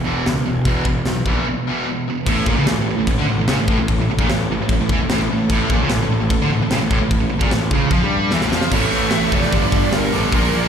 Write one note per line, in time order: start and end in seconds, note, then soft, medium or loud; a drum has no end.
0.05 0.21 E1 medium
0.05 0.25 E2 medium
0.05 0.25 B2 medium
0.05 0.25 E3 medium
0.26 0.42 C#2 loud
0.26 0.44 E2 medium
0.26 0.44 B2 medium
0.26 snare loud
0.26 open hi-hat soft
0.46 0.62 E1 medium
0.46 0.65 E2 medium
0.46 0.65 B2 medium
0.65 0.82 E1 medium
0.65 0.85 E2 medium
0.65 0.85 B2 medium
0.65 0.86 E3 medium
0.65 kick medium
0.65 open hi-hat soft
0.85 1.02 E1 medium
0.85 1.05 E2 medium
0.85 1.05 B2 medium
0.85 kick medium
1.05 1.22 B1 medium
1.05 1.25 E2 medium
1.05 1.25 B2 medium
1.05 snare loud
1.05 open hi-hat soft
1.25 1.41 A#1 medium
1.25 1.45 E2 medium
1.25 1.46 B2 medium
1.25 1.46 E3 loud
1.25 kick medium
1.47 1.65 E2 medium
1.47 1.65 B2 medium
1.67 1.86 E2 medium
1.67 1.86 B2 medium
1.67 1.86 E3 medium
1.87 2.05 E2 medium
1.87 2.06 B2 medium
2.08 2.26 E2 medium
2.08 2.26 B2 medium
2.26 2.46 A1 loud
2.26 2.46 A2 loud
2.26 8.69 A3 medium
2.26 8.69 E4 medium
2.26 8.69 A4 medium
2.26 kick loud
2.26 crash loud
2.26 crash medium
2.46 2.56 A#1 medium
2.46 2.56 A#2 loud
2.46 kick loud
2.56 2.67 C#2 medium
2.56 2.67 C#3 loud
2.67 2.77 A1 medium
2.67 2.76 A2 medium
2.67 snare loud
2.67 crash medium
2.77 2.87 A1 medium
2.77 2.85 A2 medium
2.81 2.90 A2 medium
2.86 2.96 A1 medium
2.86 2.97 A2 medium
2.91 2.99 A2 medium
2.97 3.07 A1 medium
2.97 3.07 A2 medium
3.07 3.16 A1 medium
3.07 3.18 A2 medium
3.07 kick medium
3.07 crash medium
3.17 3.26 D2 medium
3.17 3.28 D3 loud
3.27 3.37 A1 medium
3.27 3.38 A2 medium
3.38 3.47 A1 medium
3.38 3.48 A2 medium
3.48 3.58 C#2 loud
3.48 3.58 C#3 loud
3.48 snare loud
3.48 crash medium
3.58 3.68 A1 medium
3.58 3.68 A2 medium
3.68 3.78 A1 loud
3.68 3.78 A2 loud
3.68 kick loud
3.79 3.98 A1 medium
3.79 3.95 A2 medium
3.88 kick loud
3.88 crash medium
4.00 4.09 A1 medium
4.00 4.09 A2 medium
4.10 muted distorted electric guitar stroke medium
4.10 muted picked electric bass stroke soft
4.19 4.28 A#1 medium
4.19 4.29 A#2 loud
4.19 kick loud
4.29 4.49 A1 medium
4.29 4.46 A2 medium
4.29 snare loud
4.29 crash medium
4.51 4.59 A1 medium
4.51 4.61 A2 medium
4.61 4.68 A1 medium
4.61 4.71 A2 medium
4.69 4.79 A1 medium
4.69 4.80 A2 medium
4.69 kick medium
4.69 crash medium
4.80 4.89 A1 medium
4.80 4.91 A2 medium
4.89 4.99 E2 loud
4.89 5.00 E3 loud
4.89 kick loud
5.00 5.08 A1 medium
5.00 5.10 A2 medium
5.09 5.17 A1 loud
5.09 5.20 A2 loud
5.09 snare loud
5.09 crash medium
5.18 5.28 A1 medium
5.22 5.31 A2 medium
5.30 5.49 A1 medium
5.30 5.47 A2 medium
5.49 5.69 A1 loud
5.49 5.71 A2 loud
5.49 kick medium
5.49 crash medium
5.69 5.79 A#1 loud
5.69 5.81 A#2 loud
5.69 kick loud
5.81 5.90 C#2 medium
5.81 5.91 C#3 loud
5.89 6.00 A1 loud
5.89 6.01 A2 medium
5.89 snare loud
5.89 crash medium
6.01 6.09 A1 medium
6.01 6.12 A2 medium
6.10 6.19 A1 medium
6.10 6.20 A2 medium
6.21 6.30 A1 medium
6.21 6.30 A2 medium
6.30 6.39 A1 medium
6.30 6.41 A2 medium
6.30 kick loud
6.30 crash medium
6.40 6.49 D2 medium
6.40 6.51 D3 loud
6.50 6.59 A1 medium
6.50 6.60 A2 medium
6.60 6.70 A1 medium
6.60 6.71 A2 medium
6.71 6.80 C#2 loud
6.71 6.81 C#3 loud
6.71 snare loud
6.71 crash medium
6.81 6.90 A1 medium
6.81 6.91 A2 medium
6.91 7.00 A1 loud
6.91 7.01 A2 loud
6.91 kick loud
7.01 7.20 A1 medium
7.01 7.18 A2 medium
7.11 kick loud
7.11 crash medium
7.22 7.31 A1 medium
7.22 7.31 A2 medium
7.32 muted picked electric bass stroke soft
7.32 muted distorted electric guitar stroke medium
7.41 7.51 A#1 medium
7.41 7.52 A#2 loud
7.41 kick loud
7.51 7.71 A1 medium
7.51 7.69 A2 medium
7.51 snare loud
7.51 crash medium
7.71 7.90 C#2 medium
7.71 7.92 C#3 loud
7.71 kick loud
7.90 8.01 F2 loud
7.90 8.02 F3 loud
7.90 kick loud
7.90 crash medium
8.02 8.30 G2 medium
8.02 8.32 G3 loud
8.31 8.41 E2 loud
8.31 8.42 E3 loud
8.31 snare medium
8.41 8.50 A1 medium
8.41 8.52 A2 loud
8.41 snare medium
8.51 8.70 F2 loud
8.51 8.73 F3 medium
8.51 snare medium
8.62 snare loud
8.71 8.85 A1 medium
8.71 9.32 A2 medium
8.71 9.32 E3 medium
8.71 9.53 A3 medium
8.71 9.53 E4 medium
8.71 10.32 A4 medium
8.71 9.10 C#5 medium
8.71 kick loud
8.71 crash loud
8.76 9.31 A3 medium
8.91 9.06 A1 medium
8.91 open hi-hat medium
9.11 9.25 A1 loud
9.11 9.32 E5 medium
9.11 snare loud
9.11 open hi-hat medium
9.32 9.46 F1 loud
9.32 9.53 A2 medium
9.32 9.52 E3 medium
9.32 9.52 A3 medium
9.32 9.96 D5 medium
9.32 kick medium
9.32 open hi-hat medium
9.43 snare soft
9.52 9.66 G1 loud
9.52 10.12 G2 loud
9.52 10.12 D3 medium
9.52 10.11 G3 loud
9.52 10.34 D4 medium
9.52 kick loud
9.52 open hi-hat medium
9.56 10.34 G3 medium
9.72 9.86 G1 loud
9.72 kick loud
9.72 open hi-hat medium
9.92 10.06 G1 loud
9.92 10.15 A#4 medium
9.92 snare loud
9.92 open hi-hat medium
10.12 10.27 A1 loud
10.12 10.33 G2 medium
10.12 10.31 D3 medium
10.12 10.32 G3 medium
10.12 10.35 A4 medium
10.12 open hi-hat medium
10.32 10.46 A#1 loud
10.32 10.68 A#2 medium
10.32 10.68 F3 medium
10.32 10.68 A#3 medium
10.32 10.68 A#3 loud
10.32 10.68 F4 medium
10.32 10.68 A#4 medium
10.32 10.55 A#4 medium
10.32 kick loud
10.32 open hi-hat medium
10.52 10.66 A#1 medium
10.52 10.68 D5 loud
10.52 open hi-hat medium